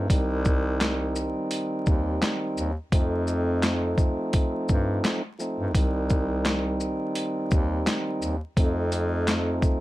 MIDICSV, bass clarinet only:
0, 0, Header, 1, 2, 480
1, 0, Start_track
1, 0, Tempo, 705882
1, 67, Time_signature, 4, 2, 24, 8
1, 6667, End_track
2, 0, Start_track
2, 0, Title_t, "Bass clarinet"
2, 0, Program_c, 0, 71
2, 67, Note_on_c, 0, 36, 116
2, 897, Note_off_c, 0, 36, 0
2, 1272, Note_on_c, 0, 39, 93
2, 1483, Note_off_c, 0, 39, 0
2, 1747, Note_on_c, 0, 39, 93
2, 1869, Note_off_c, 0, 39, 0
2, 1987, Note_on_c, 0, 41, 106
2, 2817, Note_off_c, 0, 41, 0
2, 3192, Note_on_c, 0, 43, 103
2, 3403, Note_off_c, 0, 43, 0
2, 3804, Note_on_c, 0, 43, 91
2, 3907, Note_on_c, 0, 36, 105
2, 3917, Note_off_c, 0, 43, 0
2, 4737, Note_off_c, 0, 36, 0
2, 5112, Note_on_c, 0, 39, 99
2, 5323, Note_off_c, 0, 39, 0
2, 5587, Note_on_c, 0, 39, 86
2, 5709, Note_off_c, 0, 39, 0
2, 5827, Note_on_c, 0, 41, 115
2, 6657, Note_off_c, 0, 41, 0
2, 6667, End_track
0, 0, End_of_file